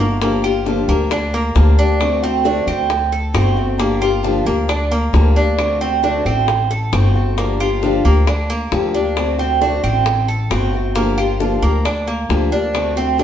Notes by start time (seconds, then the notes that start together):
Already playing: G1
0.00 A3 A#3 D4 F#4
0.21 D3 F3 A#3 D4 G4, high bongo
0.43 A#3 D4 F4 G4, high bongo, claves
0.66 D3 F3 A#3 D4 G4, high bongo
0.88 D2 A#3 D4 G4, high bongo
1.10 D4, muted steel-string acoustic guitar stroke, high bongo, claves
1.34 A#3, high bongo
1.55 D2 D3 F3 A#3 D4 G4, high bongo, low bongo
1.78 A#3 D4 G4
2.00 D3 A3 C4 F#4, high bongo, claves
2.22 A3 C4 F#4
2.44 D3 A3 C4 D4 F#4, high bongo
2.67 D2 A3 C4 F#4, high bongo, claves
2.90 muted steel-string acoustic guitar stroke, high bongo
3.12 A4, high bongo
3.34 G1 D3 A3 C4 F#4, high bongo, low bongo, claves
3.56 A3 C4 F#4, high bongo
3.78 D3 F3 A#3 D4 G4, high bongo
4.01 A#3 D4 F4 G4, high bongo, claves
4.23 D3 F3 A#3 D4 G4, high bongo
4.45 D2 A#3 D4 G4, high bongo
4.68 D4, muted steel-string acoustic guitar stroke, high bongo, claves
4.91 A#3, high bongo
5.13 D2 D3 F3 A#3 D4 G4, high bongo, low bongo
5.36 A#3 D4 G4
5.58 D3 A3 C4 F#4, high bongo, claves
5.81 A3 C4 F#4
6.03 D3 A3 C4 D4 F#4, high bongo
6.25 A1 A3 C4 F#4, high bongo, claves
6.48 muted steel-string acoustic guitar stroke, high bongo
6.70 A4, high bongo
6.92 G1 D3 A3 C4 F#4, high bongo, low bongo, claves
7.15 A3 C4 F#4, high bongo
7.38 D3 F3 A#3 D4 G4, high bongo
7.60 A#3 D4 F4 G4, high bongo, claves
7.82 D3 F3 A#3 D4 G4, high bongo
8.05 D2 A#3 D4 G4, high bongo
8.27 D4, muted steel-string acoustic guitar stroke, high bongo, claves
8.50 A#3, high bongo
8.72 D2 D3 F3 A#3 D4 G4, high bongo, low bongo
8.94 A#3 D4 G4
9.17 D3 A3 C4 F#4, high bongo, claves
9.38 A3 C4 F#4
9.61 D3 A3 C4 D4 F#4, high bongo
9.83 A1 A3 C4 F#4, high bongo, claves
10.06 muted steel-string acoustic guitar stroke, high bongo
10.28 A4, high bongo
10.50 G1 D3 A3 C4 F#4, high bongo, low bongo, claves
10.73 A3 C4 F#4, high bongo
10.95 D3 F3 A#3 D4 G4, high bongo
11.18 A#3 D4 F4 G4, high bongo, claves
11.40 D3 F3 A#3 D4 G4, high bongo
11.62 D2 A#3 D4 G4, high bongo
11.85 D4, muted steel-string acoustic guitar stroke, high bongo, claves
12.07 A#3, high bongo
12.29 D2 D3 F3 A#3 D4 G4, high bongo, low bongo
12.51 A#3 D4 G4
12.73 D3 A3 C4 F#4, high bongo, claves
12.96 A3 C4 F#4
13.18 D3 A3 C4 D4 F#4, high bongo